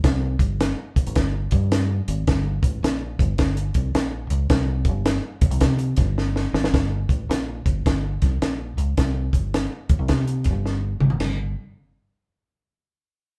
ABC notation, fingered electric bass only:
X:1
M:4/4
L:1/16
Q:"Swing" 1/4=107
K:Cdor
V:1 name="Fingered electric bass" clef=bass
C,,2 G,,,3 z B,,, A,,, G,,,2 G,,4 _A,,,2 | G,,,2 A,,,2 B,,,2 G,,,2 G,,,2 C,,2 B,,,2 ^C,,2 | C,,2 G,,,3 z D,, C,, C,2 G,,,4 _A,,,2 | G,,,2 A,,,2 B,,,2 G,,,2 G,,,2 C,,2 B,,,2 ^C,,2 |
C,,2 G,,,3 z D,, C,, C,2 G,,,4 _A,,,2 | G,,,2 z12 z2 |]